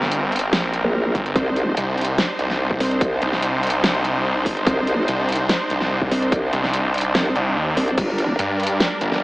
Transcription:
0.00 0.51 G1 loud
0.00 1.32 G3 medium
0.00 1.32 C4 medium
0.00 1.32 A#4 loud
0.00 snare soft
0.11 closed hi-hat medium
0.32 closed hi-hat medium
0.36 closed hi-hat medium
0.39 closed hi-hat medium
0.53 0.83 A#1 loud
0.53 snare loud
0.53 closed hi-hat medium
0.74 closed hi-hat medium
0.85 1.13 A#1 loud
1.15 1.34 G1 loud
1.15 kick medium
1.15 closed hi-hat soft
1.26 closed hi-hat soft
1.36 1.75 C2 loud
1.36 9.23 D4 medium
1.36 7.94 D#4 medium
1.36 7.94 C5 loud
1.36 kick loud
1.36 closed hi-hat medium
1.56 closed hi-hat medium
1.77 1.96 C2 loud
1.77 closed hi-hat medium
1.98 2.17 C2 loud
1.98 closed hi-hat soft
2.01 closed hi-hat medium
2.05 closed hi-hat medium
2.18 snare loud
2.18 closed hi-hat medium
2.39 2.79 C2 medium
2.39 closed hi-hat medium
2.50 snare soft
2.71 kick medium
2.80 3.20 C2 loud
2.80 open hi-hat medium
2.91 closed hi-hat soft
3.01 kick loud
3.01 closed hi-hat medium
3.22 3.82 C2 loud
3.22 closed hi-hat medium
3.33 snare soft
3.42 closed hi-hat medium
3.63 closed hi-hat soft
3.67 closed hi-hat medium
3.70 closed hi-hat medium
3.84 4.44 C2 medium
3.84 snare loud
3.84 closed hi-hat medium
4.05 closed hi-hat medium
4.46 4.65 G1 loud
4.46 kick medium
4.46 open hi-hat medium
4.57 closed hi-hat soft
4.67 5.06 C2 loud
4.67 kick loud
4.67 closed hi-hat medium
4.87 closed hi-hat medium
5.08 5.27 C2 loud
5.08 closed hi-hat medium
5.29 5.48 C2 medium
5.29 closed hi-hat soft
5.32 closed hi-hat medium
5.36 closed hi-hat medium
5.49 snare loud
5.49 closed hi-hat medium
5.70 6.10 C2 loud
5.70 closed hi-hat medium
5.81 snare soft
6.02 kick medium
6.11 6.51 C2 loud
6.11 open hi-hat loud
6.22 closed hi-hat soft
6.32 kick loud
6.32 closed hi-hat medium
6.53 7.13 C2 loud
6.53 closed hi-hat medium
6.64 snare soft
6.73 closed hi-hat medium
6.94 closed hi-hat soft
6.98 closed hi-hat medium
7.01 closed hi-hat medium
7.15 7.34 C2 loud
7.15 snare loud
7.15 closed hi-hat medium
7.36 7.55 C2 medium
7.36 closed hi-hat medium
7.56 7.75 D#2 medium
7.77 7.96 C2 loud
7.77 open hi-hat medium
7.88 closed hi-hat soft
7.98 8.37 G1 loud
7.98 9.23 G3 medium
7.98 9.23 A#4 loud
7.98 kick loud
7.98 closed hi-hat medium
7.98 crash medium
8.18 closed hi-hat medium
8.39 8.58 G2 medium
8.39 closed hi-hat medium
8.60 8.79 G2 medium
8.60 closed hi-hat medium
8.63 closed hi-hat medium
8.67 closed hi-hat medium
8.80 snare loud
8.80 closed hi-hat medium
9.01 9.23 G1 loud
9.01 closed hi-hat medium
9.12 snare soft

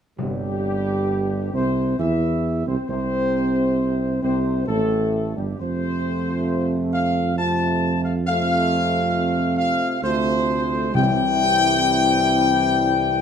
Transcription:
0.18 1.50 G1 medium
0.18 1.50 G2 medium
0.18 1.50 C3 medium
0.18 1.50 G3 medium
0.18 1.50 G4 medium
1.52 1.96 C2 medium
1.52 1.95 C3 medium
1.52 1.95 C4 medium
1.52 1.96 C5 medium
1.97 2.62 E2 medium
1.97 2.62 E3 medium
1.97 2.63 E4 medium
1.97 2.63 E5 medium
2.65 2.77 C2 medium
2.65 2.75 C3 medium
2.65 2.88 C4 medium
2.65 2.87 C5 medium
2.88 4.19 C2 medium
2.88 4.18 C3 medium
2.88 4.19 C4 medium
2.88 4.19 C5 loud
4.22 4.65 C2 medium
4.22 4.64 C3 medium
4.22 4.64 C4 medium
4.22 4.64 C5 medium
4.66 5.33 A1 medium
4.66 5.36 A2 medium
4.66 5.33 A3 medium
4.66 5.33 A4 medium
5.34 5.59 G1 medium
5.34 5.57 G2 medium
5.34 5.47 G3 medium
5.34 5.60 G4 medium
5.58 9.85 F2 medium
5.58 7.32 C3 medium
5.58 7.33 A3 medium
5.58 7.33 C4 medium
5.58 7.33 F4 medium
5.58 6.76 C5 loud
6.93 7.34 F5 medium
7.35 8.21 C3 medium
7.35 8.21 A3 medium
7.35 8.20 C4 medium
7.35 8.20 F4 medium
7.35 7.99 A5 medium
8.04 8.13 F5 medium
8.25 9.98 C3 medium
8.25 9.98 A3 medium
8.25 9.98 C4 medium
8.25 9.98 F4 medium
8.25 9.54 F5 loud
9.57 9.99 F5 loud
10.01 10.96 D2 medium
10.01 10.90 C3 medium
10.01 10.90 A3 medium
10.01 10.89 C4 medium
10.01 10.89 F4 medium
10.01 10.90 C5 loud
10.93 13.22 C2 medium
10.93 12.22 C3 medium
10.93 13.22 E3 medium
10.93 13.22 G3 medium
10.93 13.22 C4 medium
10.93 13.22 E4 medium
10.93 13.22 G5 loud

